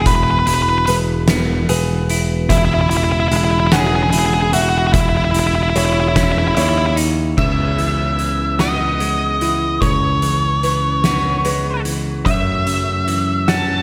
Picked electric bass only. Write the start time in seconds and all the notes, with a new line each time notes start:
0.06 E1
0.47 E1
0.88 E1
1.69 E1
2.50 E1
3.31 E1
3.73 E1
4.14 E1
4.54 E1
4.94 E1
5.35 E1
5.76 E1
6.57 D#2
7.38 C#2
9.82 C#2
12.26 F#2